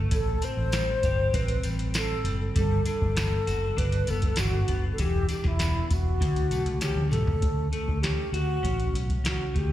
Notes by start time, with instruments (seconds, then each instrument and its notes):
Already playing: clean electric guitar A3 C#4 F#4
0.11 fingered electric bass A1, clean electric guitar A2, alto flute A4, kick, closed hi-hat, tambourine
0.42 clean electric guitar C4, alto flute C5, closed hi-hat, tambourine
0.57 fingered electric bass A1
0.72 clean electric guitar G3, snare, closed hi-hat, tambourine
1.03 fingered electric bass G1, clean electric guitar G4, kick, closed hi-hat, tambourine
1.33 fingered electric bass A1, clean electric guitar C4, alto flute B4, kick, closed hi-hat, tambourine
1.48 closed hi-hat
1.63 fingered electric bass A1, clean electric guitar G3, closed hi-hat, tambourine
1.79 closed hi-hat
1.94 clean electric guitar C4, alto flute A4, snare, closed hi-hat, tambourine
2.24 fingered electric bass F#1, clean electric guitar G3, closed hi-hat, tambourine
2.56 fingered electric bass G1, clean electric guitar G3, alto flute A4, kick, closed hi-hat, tambourine
2.85 clean electric guitar D4, alto flute A4, closed hi-hat, tambourine
3.02 fingered electric bass G1, kick
3.16 clean electric guitar B3, snare, closed hi-hat, tambourine
3.47 fingered electric bass F#1, clean electric guitar F#4, closed hi-hat, tambourine
3.77 fingered electric bass G1, clean electric guitar D4, alto flute B4, kick, closed hi-hat
3.92 closed hi-hat
4.07 fingered electric bass F#1, clean electric guitar B3, alto flute A4, closed hi-hat, tambourine
4.22 kick, closed hi-hat
4.36 fingered electric bass G1, clean electric guitar D4, alto flute F#4, snare, closed hi-hat, tambourine
4.68 fingered electric bass F#1, clean electric guitar B3, kick, closed hi-hat, tambourine
4.93 alto flute A4
4.98 fingered electric bass E1, clean electric guitar E3, alto flute G4, kick, closed hi-hat, tambourine
5.29 clean electric guitar D4, alto flute G4, closed hi-hat, tambourine
5.44 fingered electric bass E1, alto flute E4, kick, snare
5.59 clean electric guitar B3, snare, closed hi-hat, tambourine
5.91 fingered electric bass E1, alto flute F#4, kick, closed hi-hat, tambourine
6.21 fingered electric bass D2, clean electric guitar D3, kick, closed hi-hat, tambourine
6.36 fingered electric bass D2, closed hi-hat
6.51 fingered electric bass B1, clean electric guitar A3, closed hi-hat, tambourine
6.66 fingered electric bass C#2, closed hi-hat
6.81 clean electric guitar C#4, alto flute G4, snare, closed hi-hat, tambourine
6.96 fingered electric bass D2, high tom
7.11 fingered electric bass B1, clean electric guitar A3, alto flute A4, closed hi-hat, mid tom, tambourine
7.27 fingered electric bass C#2, floor tom
7.42 fingered electric bass D2, kick, closed hi-hat
7.72 clean electric guitar A3, alto flute A4, closed hi-hat
7.88 fingered electric bass D2, kick
8.02 clean electric guitar C#4, alto flute G4, snare, closed hi-hat
8.33 fingered electric bass D2, alto flute F#4, clean electric guitar F#4, closed hi-hat
8.63 fingered electric bass A1, clean electric guitar C#4, kick, closed hi-hat
8.80 closed hi-hat
8.93 fingered electric bass B1, closed hi-hat
9.10 kick, closed hi-hat
9.24 fingered electric bass C#2, clean electric guitar C#4, alto flute F#4, snare, closed hi-hat
9.54 fingered electric bass D2, clean electric guitar A3, alto flute G4, kick, closed hi-hat